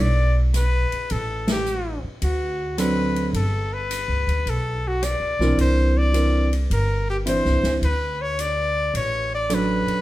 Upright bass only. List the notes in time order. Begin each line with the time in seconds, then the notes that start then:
Already playing: B1
0.93 muted upright bass stroke
1.11 A1
2.04 muted upright bass stroke
2.22 D2
3.33 G1
4.08 C#2
4.27 D2
4.46 B1
5.20 C#2
5.39 B1
5.58 C2
6.70 G1
7.45 C2
7.63 C#2
7.81 D2
8.94 A1
9.87 muted upright bass stroke